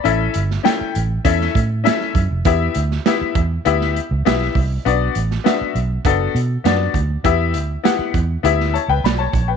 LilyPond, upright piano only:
\new Staff \with { instrumentName = "Upright piano" } { \time 4/4 \key e \dorian \tempo 4 = 100 << { <d'' b''>16 r2. r8. | r1 | r1 | r2 r8 <cis'' a''>16 <b' g''>16 <d'' b''>16 <cis'' a''>8 <b' g''>16 | } \\ { <cis' e' a' e''>8 r8 <cis' e' a' g''>8 r8 <cis' e' a' e''>8 r8 <cis' e' a' e''>8 r8 | <b e' g' e''>8 r8 <b e' g' e''>8 r8 <b e' g' e''>8 r8 <b e' g' e''>8 r8 | <b d' fis' d''>8 r8 <b d' fis' e''>8 r8 <b d' fis' a'>8 r8 <b d' fis' d''>8 r8 | <b e' g' e''>8 r8 <b e' g' fis''>8 r8 <b e' g' e''>8 r4. | } >> }